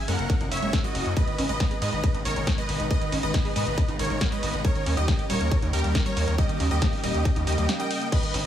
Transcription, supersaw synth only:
0.08 A#4 F#5
0.51 C#5 E5
0.84 F#4 D#5
1.17 B4 D#5
1.49 B4 D#5
1.82 B4 D#5
2.25 A#4 C#5
2.58 B4 D#5
2.91 B4 D#5
3.23 B4 D#5
3.56 B4 D#5
3.99 A#4 C#5
4.32 B4 D#5
4.65 A#4 C#5
4.97 G4 D#5
5.30 A#4 C#5
5.73 G4 A#4
6.06 A#4 C#5
6.38 G4 D#5
6.71 G4 D#5
7.04 G4 D#5
7.47 G4 D#5
7.79 D#5 G5
8.12 B4 D#5

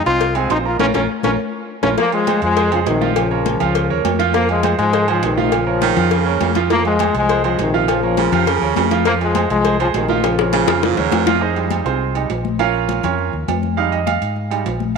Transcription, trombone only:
0.06 F4
0.37 C4
0.51 D#4
0.66 F4
0.80 C#4
0.95 C#4
1.24 C#4
1.83 C#4

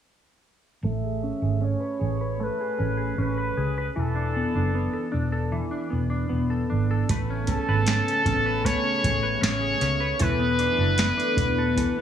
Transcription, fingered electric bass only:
0.83 A1
1.42 G#1
2.01 A1
2.79 A1
3.18 A1
3.57 C#2
3.97 E1
4.55 F#1
5.14 E1
5.92 E1
6.32 E1
6.71 G#1
7.09 A1
7.68 G#1
8.25 A1
9.04 A1
9.42 A1
9.81 C#2
10.20 E1
10.78 F#1
11.37 E1

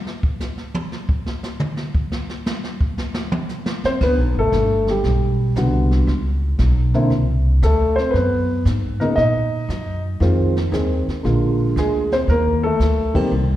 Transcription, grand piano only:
3.85 C4 C5
4.03 B3 B4
4.39 A3 A4
4.90 G3 G4
5.56 D3 G3 B3 F#4
6.94 D3 A#3 C4 E4
7.63 A3 A4
7.96 C4 C5
8.11 B4
8.15 B3
9.00 C#3 A#3 B3 D#4 A#4
9.16 D#4 D#5
10.20 D#3 G#3 C4 F4
10.72 D#3 G#3 C4 G#4
11.23 D3 G#3 A#3 F4
11.78 G#3 G#4
12.13 C4 C5
12.29 A#3 A#4
12.63 A3 A4
13.14 D#3 A#3 C4 G4
13.18 G3

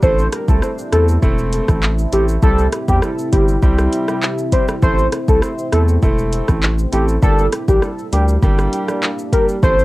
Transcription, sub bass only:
0.03 A1
0.48 C2
0.93 E2
1.23 E1
1.69 A1
2.13 A1
2.43 C2
2.88 E2
3.33 G1
3.63 C2
4.83 A1
5.28 C2
5.73 E2
6.03 E1
6.49 A1
6.93 A1
7.23 G1
7.68 A#1
8.13 D2
8.43 G1
9.63 A1

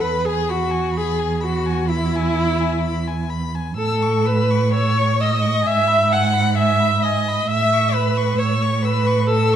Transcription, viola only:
0.00 B4
0.25 G#4
0.49 F#4
0.97 G#4
1.43 F#4
1.90 E4
3.76 A4
4.26 B4
4.73 C#5
5.21 D#5
5.67 E5
6.12 F#5
6.58 E5
7.03 D#5
7.47 E5
7.94 B4
8.39 C#5
8.83 B4
9.27 A4

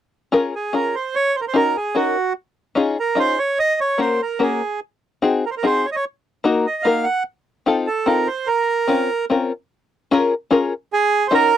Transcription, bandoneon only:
0.55 G#4
0.75 A#4
0.95 C5
1.15 C#5
1.36 C5
1.41 A#4
1.48 C5
1.56 A#4
1.77 G#4
1.96 F#4
3.00 A#4
3.19 C5
3.39 C#5
3.59 D#5
3.81 C#5
4.01 C5
4.22 A#4
4.42 G#4
5.46 A#4
5.51 C5
5.57 A#4
5.66 C5
5.86 C#5
5.92 D#5
5.96 C#5
6.67 D#5
6.83 F5
7.04 F#5
7.87 A4
8.06 A#4
8.27 C5
8.47 A#4
10.93 G#4
11.27 C5
11.34 A#4

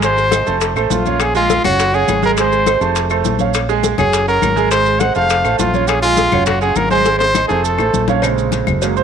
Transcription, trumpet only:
0.05 C5
0.91 F4
1.21 G#4
1.36 F4
1.65 F#4
1.95 G#4
2.25 A#4
2.40 C5
3.98 G#4
4.28 A#4
4.71 C5
5.00 F#5
5.16 F5
5.59 F4
5.88 G#4
6.03 F4
6.46 F#4
6.61 G#4
6.76 A#4
6.91 C5
7.19 C5
7.48 G#4
7.64 A4

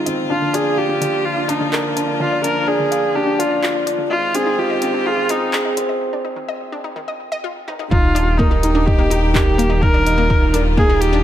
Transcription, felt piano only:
Already playing: C4 D#4 F4 G#4
0.06 C4
0.30 D4
0.54 D5
0.77 F4
1.49 D4
1.72 A#4
1.96 D4
2.20 D5
2.44 D4
2.68 D5
2.91 F5
3.15 D4
3.39 D5
3.63 F4
4.35 C4
4.58 F4
4.82 C4
5.06 G#4
5.30 C4
5.53 G#4
5.77 C5
7.92 D#4
8.39 A#4
8.63 D#4
8.87 D#5
9.11 D#4
9.35 A#4
9.83 D#4
10.06 D#5
10.30 D#4
10.54 A#4
10.77 D#4

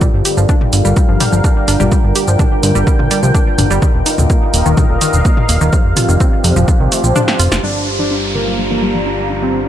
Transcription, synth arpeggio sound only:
0.01 G3
0.25 G4
0.37 F3
0.49 D4
0.73 D3
0.85 G3
0.97 G3
1.09 F3
1.20 G3
1.32 F3
1.44 D4
1.68 D4
1.80 G3
1.92 G3
2.15 G4
2.28 F3
2.39 D4
2.63 D3
2.75 G3
2.87 G3
2.99 F3
3.11 G3
3.23 F3
3.35 D4
3.58 D4
3.71 G3
3.82 D#3
4.06 D#4
4.18 D3
4.30 A#3
4.54 A#2
4.66 D#3
4.77 D#3
4.90 D3
5.01 D#3
5.13 D3
5.25 A#3
5.49 A#3
5.61 D#3
5.73 F3
5.96 F4
6.09 D#3
6.20 C4
6.44 C3
6.56 F3
6.68 F3
6.80 D#3
6.92 A3
7.04 F3
7.16 D4
7.39 F4
7.52 F4
7.63 G3
7.87 G4
7.99 F3
8.11 D4
8.35 D3
8.47 G3
8.59 G3
8.71 F3
8.82 G3
8.95 F3
9.06 D4
9.30 D4
9.42 G3
9.54 G3

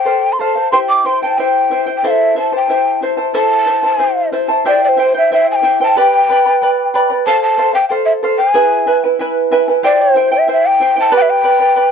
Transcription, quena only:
Already playing: G5
0.33 C6
0.40 A5
0.72 C6
0.89 D6
1.06 C6
1.23 A5
1.38 G5
1.97 G5
2.07 E5 F5
2.39 A5
2.57 G5
3.35 A5
4.68 D5
4.84 D5
4.89 C5
5.18 E5
5.33 E5
5.51 G#5
5.56 G5
5.83 A5
6.00 G5
7.27 A5
7.43 A5
7.74 G5
7.89 G5
8.05 E5
8.38 G5
8.49 G#5
9.85 D5
10.01 C5
10.34 E5
10.53 E5
10.68 G5
11.01 A5
11.17 G5
11.22 E5
11.31 G5

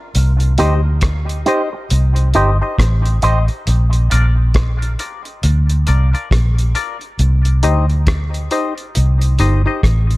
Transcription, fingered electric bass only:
0.15 C2
0.59 D2
1.91 C2
2.36 G1
2.79 A1
3.23 A1
3.67 A#1
4.12 A#1
5.44 D2
5.89 C2
6.32 A#1
7.19 C2
7.64 D2
8.97 C2
9.40 G1
9.84 A1

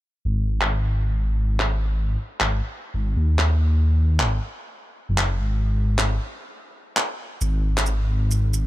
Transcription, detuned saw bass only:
0.25 G#1
2.41 G#1
2.94 G#1
3.17 D#2
4.20 G#1
5.09 F#1
5.40 G#1
5.98 G#1
7.41 G#1

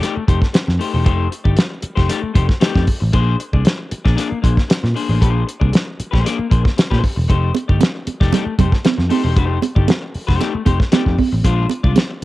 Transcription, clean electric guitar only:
0.01 A3 D#4 G4 D5
0.16 muted clean electric guitar stroke
0.27 A3 D#4 G4 C5
0.41 muted clean electric guitar stroke
0.53 muted clean electric guitar stroke
0.67 muted clean electric guitar stroke
0.79 A3 D#4 G4 C5
0.94 A3 D#4 G4 C5
1.05 A3 D#4 G4 C5
1.31 muted clean electric guitar stroke
1.44 A3 D#4 G4 D5
1.57 muted clean electric guitar stroke
1.71 muted clean electric guitar stroke
1.96 A3 D#4 G4 C5
2.09 A3 D#4 G4 D5
2.22 muted clean electric guitar stroke
2.34 A3 D#4 G4 C5
2.48 muted clean electric guitar stroke
2.60 A3 D#4 G4 D5
2.87 muted clean electric guitar stroke
3.00 muted clean electric guitar stroke
3.12 A#3 D4 G#4 C5
3.39 muted clean electric guitar stroke
3.53 A#3 D4 G#4 D5
3.64 muted clean electric guitar stroke
3.78 muted clean electric guitar stroke
4.05 A#3 D4 G#4 D5
4.16 A#3 D4 G#4 D5
4.29 muted clean electric guitar stroke
4.42 A#3 D4 G#4 C5
4.56 muted clean electric guitar stroke
4.68 muted clean electric guitar stroke
4.83 muted clean electric guitar stroke
4.95 A#3 D4 G#4 C5
5.09 A#3 D4 G#4 C5
5.21 A#3 D4 G#4 C5
5.47 muted clean electric guitar stroke
5.60 A#3 D4 G#4 D5
5.72 muted clean electric guitar stroke
5.86 muted clean electric guitar stroke
6.11 A#3 D4 G#4 C5
6.24 A#3 D4 G#4 D5
6.38 muted clean electric guitar stroke
6.50 A#3 D4 G#4 C5
6.64 muted clean electric guitar stroke
6.76 muted clean electric guitar stroke
6.90 A#3 D4 G#4 C5
7.02 muted clean electric guitar stroke
7.16 muted clean electric guitar stroke
7.28 A3 D#4 G4 C5
7.54 muted clean electric guitar stroke
7.68 A3 D#4 G4 D5
7.81 muted clean electric guitar stroke
7.94 muted clean electric guitar stroke
8.20 A3 D#4 G4 D5
8.32 A3 D#4 G4 D5
8.45 muted clean electric guitar stroke
8.59 A3 D#4 G4 C5
8.72 muted clean electric guitar stroke
8.85 muted clean electric guitar stroke
8.98 muted clean electric guitar stroke
9.09 A3 D#4 G4 C5
9.24 A3 D#4 G4 C5
9.36 A3 D#4 G4 C5
9.62 muted clean electric guitar stroke
9.75 A3 D#4 G4 D5
10.02 muted clean electric guitar stroke
10.27 A3 D#4 G4 C5
10.40 A3 D#4 G4 D5
10.54 muted clean electric guitar stroke
10.65 A3 D#4 G4 C5
10.80 muted clean electric guitar stroke
10.92 A3 D#4 G4 D5
11.18 muted clean electric guitar stroke
11.32 muted clean electric guitar stroke
11.44 G#3 D4 F4 C5
11.70 muted clean electric guitar stroke
11.83 G#3 D4 F4 D5
11.96 muted clean electric guitar stroke
12.10 muted clean electric guitar stroke

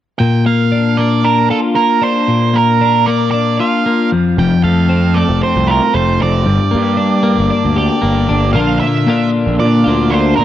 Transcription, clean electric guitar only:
0.20 A#2
0.46 A#3
0.72 D4
0.98 A#3
1.24 D4
1.51 F4
1.76 A#3
2.02 D4
2.28 A#2
2.54 A#3
2.81 D4
3.07 A#3
3.34 D4
3.60 F4
3.86 A#3
4.12 F2
4.39 F2
4.64 A3
4.89 C4
5.17 A3
5.41 C4
5.68 F4
5.94 A3
6.20 C4
6.46 G2
6.71 A#3
6.97 D4
7.23 A#3
7.50 D4
7.76 G4
8.02 A#3
8.29 D4
8.54 A#2 D3 A#3 D4 F4
8.80 D4 F4
8.84 A#3
9.07 A#2 D3 A#3 D4 F4
9.84 A#3 D4 F4
10.10 D3 A#3 D4 F4
10.38 A#3 D4 F4

